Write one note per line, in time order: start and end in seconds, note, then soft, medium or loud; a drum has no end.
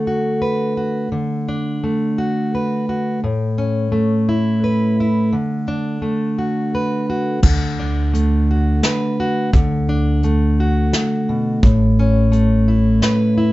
0.00 1.11 D3 medium
0.00 1.83 A3 soft
0.00 1.08 D4 soft
0.00 0.41 A4 medium
0.07 0.76 F#4 soft
0.42 1.08 B4 soft
0.77 1.08 F#4 soft
1.12 3.22 D3 medium
1.49 3.19 D4 soft
1.84 3.92 A3 soft
2.18 2.88 F#4 soft
2.55 3.20 B4 soft
2.89 3.19 F#4 soft
3.24 5.33 A2 medium
3.58 5.29 C#4 soft
3.92 6.02 A3 soft
4.29 4.98 E4 soft
4.64 5.29 B4 medium
5.00 5.34 E4 soft
5.33 7.42 D3 medium
5.68 7.39 D4 soft
6.02 7.38 A3 soft
6.39 7.08 F#4 soft
6.75 7.40 B4 soft
7.10 7.40 F#4 soft
7.43 8.79 D2 medium
7.43 9.53 D3 medium
7.43 kick medium
7.43 crash medium
7.79 9.50 D4 soft
8.13 10.24 A3 soft
8.13 closed hi-hat soft
8.51 9.19 F#4 soft
8.83 9.50 B4 medium
8.83 snare medium
8.83 closed hi-hat soft
9.20 9.50 F#4 medium
9.53 10.89 D2 medium
9.53 11.64 D3 medium
9.53 kick medium
9.53 closed hi-hat soft
9.89 11.59 D4 soft
10.23 12.31 A3 medium
10.23 closed hi-hat soft
10.60 11.60 F#4 soft
10.93 snare medium
10.93 closed hi-hat soft
11.29 11.63 B2 medium
11.63 12.99 A1 medium
11.63 13.53 A2 medium
11.63 kick medium
11.63 closed hi-hat soft
11.99 13.53 C#4 soft
12.32 13.53 A3 medium
12.32 closed hi-hat soft
12.68 13.36 E4 medium
13.02 13.53 B4 medium
13.02 snare medium
13.02 closed hi-hat soft
13.38 13.53 E4 soft